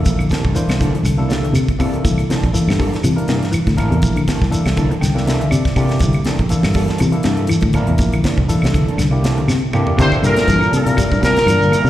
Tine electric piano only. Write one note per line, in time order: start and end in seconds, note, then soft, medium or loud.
0.00 0.25 A#3 medium
0.00 0.25 D4 medium
0.00 0.25 E4 medium
0.00 0.25 A4 medium
0.56 0.92 A#3 medium
0.56 0.93 D4 medium
0.56 0.92 E4 medium
0.56 0.92 C5 medium
1.17 1.53 A#3 medium
1.17 1.53 D4 medium
1.17 1.53 E4 medium
1.17 1.53 A4 medium
1.79 2.23 A#3 medium
1.79 2.23 D4 medium
1.79 2.23 E4 medium
1.79 2.23 A4 medium
2.53 2.91 A#3 medium
2.53 2.90 D4 medium
2.53 2.91 E4 medium
2.53 2.91 A4 medium
3.16 3.52 A#3 medium
3.16 3.52 D4 medium
3.16 3.52 E4 medium
3.16 3.52 A#4 medium
3.76 4.21 A#3 medium
3.76 4.21 D4 medium
3.76 4.21 E4 medium
3.76 4.21 A#4 medium
4.50 4.88 A#3 medium
4.50 4.88 D4 medium
4.50 4.89 E4 medium
4.50 4.89 A4 medium
4.77 5.00 A5 medium
5.01 5.25 G5 medium
5.14 5.50 A#3 medium
5.14 5.50 D4 medium
5.14 5.50 E4 medium
5.14 5.51 A4 medium
5.26 5.49 E5 medium
5.51 5.74 D5 medium
5.76 6.20 A#3 medium
5.76 6.20 D4 medium
5.76 6.20 E4 medium
5.76 6.20 G4 medium
5.76 6.00 D5 medium
6.50 6.87 A#3 medium
6.50 6.87 D4 medium
6.50 6.87 E4 medium
6.50 6.87 A4 medium
7.12 7.47 A#3 medium
7.12 7.48 D4 medium
7.12 7.48 E4 medium
7.12 7.48 A4 medium
7.74 8.18 A#3 medium
7.74 8.18 D4 medium
7.74 8.19 E4 medium
7.74 8.18 A#4 medium
8.48 8.85 A#3 medium
8.48 8.85 D4 medium
8.48 8.85 E4 medium
8.48 8.86 A4 medium
9.11 9.46 A#3 medium
9.11 9.47 D4 medium
9.11 9.47 E4 medium
9.11 9.47 G4 medium
9.73 9.97 A#3 medium
9.73 9.98 D4 medium
9.73 9.98 E4 medium
9.73 9.99 G4 loud
9.98 10.48 A#3 medium
9.98 10.48 D4 medium
9.98 10.48 E4 medium
9.98 10.49 A4 medium
10.86 11.36 A#3 medium
10.86 11.36 D4 medium
10.86 11.36 E4 medium
10.86 11.37 A#4 medium
11.72 11.87 A#3 medium
11.72 11.87 D4 medium
11.72 11.87 E4 medium
11.72 11.87 A4 medium